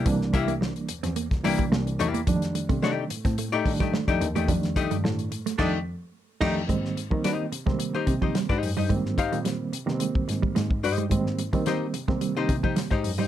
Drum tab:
CC |----------------|----------------|--------x-----x-|----------------|
HH |x-xx-xxxxxox-xxx|xxxx--xxx-ox-xxx|xxxx-xxx--------|x-x-x-x-x-x-x-o-|
SD |-o--o--o-oo-o---|-o--o--o---ooo--|-o--o--oo-----o-|-o--o--o----oo--|
BD |o-o------o-o----|o--o---o--oo-o--|o-o-----o-----o-|o--o---o--oo-o--|

CC |----------------|----------------|
HH |x-xxx-x-x-x-x-ox|x-xxx-x-x-x-x-o-|
SD |-o--o--o--o-o---|-o--o--o----oo--|
BD |o-o------o-o-o--|o--o---o--oo-o--|